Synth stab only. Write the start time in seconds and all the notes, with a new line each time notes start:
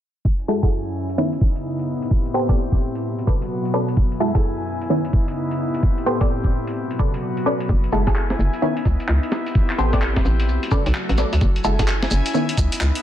0.48 G#3 E4 F#4 A4
0.63 E4 F#4 G#4 A4
1.18 D#3 B3 C#4 E4
2.34 B3 G4 A4 C5
2.49 B3 G4 A4 D5
3.27 C#3 A4 B4 D5
3.74 C#4 A4 B4 D5
4.20 G#3 E4 F#4 A4
4.35 E4 F#4 G#4 A4
4.90 D#3 B3 C#4 E4
6.06 B3 G4 A4 C5
6.21 B3 G4 A4 D5
6.99 C#3 A4 B4 D5
7.46 C#4 A4 B4 D5
7.92 G#3 E4 F#4 A4
8.07 E4 F#4 G#4 A4
8.62 D#3 B3 C#4 E4
9.78 B3 G4 A4 C5
9.93 B3 G4 A4 D5
10.71 C#3 A4 B4 D5
11.18 C#4 A4 B4 D5
11.65 G#3 E4 F#4 A4
11.79 E4 F#4 G#4 A4
12.34 D#3 B3 C#4 E4